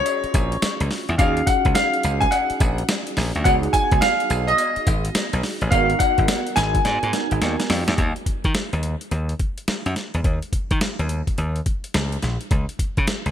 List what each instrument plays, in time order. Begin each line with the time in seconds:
Already playing: tine electric piano C#4 F4 F#4 G#4, grand piano C#5
0.06 closed hi-hat, tambourine, cowbell
0.24 muted slap bass stroke, closed hi-hat
0.34 slap bass A#1, kick, closed hi-hat, tambourine
0.52 closed hi-hat
0.62 muted slap bass stroke, snare, closed hi-hat, tambourine, cowbell
0.80 slap bass C#2, closed hi-hat
0.91 snare, open hi-hat
1.09 slap bass E2, closed hi-hat
1.18 slap bass D#2, tine electric piano C#4 D#4 F#4 G#4, grand piano F5, kick, closed hi-hat, tambourine, cowbell
1.37 closed hi-hat
1.47 grand piano F#5, kick, closed hi-hat, tambourine
1.65 slap bass C#2, kick, closed hi-hat
1.75 grand piano F5, snare, closed hi-hat, tambourine, cowbell
1.94 closed hi-hat
2.03 slap bass C#2, closed hi-hat, tambourine
2.21 grand piano G#5, kick, closed hi-hat
2.31 grand piano F#5, closed hi-hat, tambourine, cowbell
2.50 muted slap bass stroke, closed hi-hat
2.60 slap bass A#1, kick, closed hi-hat, tambourine
2.78 closed hi-hat
2.88 snare, closed hi-hat, tambourine, cowbell
3.07 closed hi-hat
3.17 slap bass A#1, snare, open hi-hat
3.35 slap bass D2, closed hi-hat
3.44 slap bass C#2, tine electric piano B3 D#4 F#4 G#4, grand piano F#5, kick, closed hi-hat, tambourine, cowbell
3.63 closed hi-hat
3.73 grand piano G#5, kick, closed hi-hat, tambourine
3.91 slap bass C#2, kick, closed hi-hat
4.01 grand piano F5, snare, closed hi-hat, tambourine, cowbell
4.20 closed hi-hat
4.30 slap bass B1, closed hi-hat, tambourine
4.47 grand piano D#5, closed hi-hat
4.58 closed hi-hat, tambourine, cowbell
4.76 muted slap bass stroke, closed hi-hat
4.87 slap bass G#1, kick, closed hi-hat, tambourine
5.05 closed hi-hat
5.15 muted slap bass stroke, snare, closed hi-hat, tambourine, cowbell
5.33 slap bass B1, closed hi-hat
5.43 snare, open hi-hat
5.61 slap bass A1, closed hi-hat
5.71 slap bass G#1, tine electric piano B3 D#4 F#4 A#4, grand piano F5, kick, closed hi-hat, tambourine, cowbell
5.90 closed hi-hat
5.99 grand piano F#5, kick, closed hi-hat, tambourine, cowbell
6.18 slap bass G#1, kick, closed hi-hat
6.28 snare, closed hi-hat, tambourine, cowbell
6.47 closed hi-hat
6.56 slap bass G#1, grand piano G#5, snare, closed hi-hat, tambourine
6.75 kick, closed hi-hat
6.85 slap bass G#2, snare, closed hi-hat, cowbell
7.03 slap bass G#2, closed hi-hat
7.13 tine electric piano B3 D#4 F#4 A#4, snare, closed hi-hat
7.31 slap bass G#1, closed hi-hat
7.42 slap bass D#2, snare, closed hi-hat, cowbell
7.60 snare, closed hi-hat
7.70 slap bass F2, snare, open hi-hat, cowbell
7.88 slap bass E2, snare, closed hi-hat
7.98 slap bass D#2, kick, closed hi-hat
8.16 closed hi-hat
8.26 muted slap bass stroke, kick, closed hi-hat
8.44 slap bass D#3, kick, closed hi-hat
8.54 muted slap bass stroke, snare, closed hi-hat
8.73 slap bass D#2, closed hi-hat
8.83 closed hi-hat
9.01 closed hi-hat
9.11 slap bass D#2, closed hi-hat
9.29 closed hi-hat
9.39 kick, closed hi-hat
9.58 closed hi-hat
9.68 muted slap bass stroke, snare, closed hi-hat
9.86 slap bass F#2, closed hi-hat
9.96 snare, closed hi-hat
10.14 slap bass E2, closed hi-hat
10.24 slap bass D#2, kick, closed hi-hat
10.42 closed hi-hat
10.53 muted slap bass stroke, kick, closed hi-hat
10.71 slap bass D#3, kick, closed hi-hat
10.81 muted slap bass stroke, snare, closed hi-hat
10.99 slap bass D#2, closed hi-hat
11.09 closed hi-hat
11.27 kick, closed hi-hat
11.38 slap bass D#2, closed hi-hat
11.56 closed hi-hat
11.66 kick, closed hi-hat
11.84 closed hi-hat
11.94 slap bass C#2, snare, closed hi-hat
12.12 closed hi-hat
12.22 slap bass A#1, snare, closed hi-hat
12.41 closed hi-hat
12.51 slap bass C#2, kick, closed hi-hat
12.69 closed hi-hat
12.79 muted slap bass stroke, kick, closed hi-hat
12.97 slap bass C#3, kick, closed hi-hat
13.07 muted slap bass stroke, snare, closed hi-hat
13.26 slap bass C#2, closed hi-hat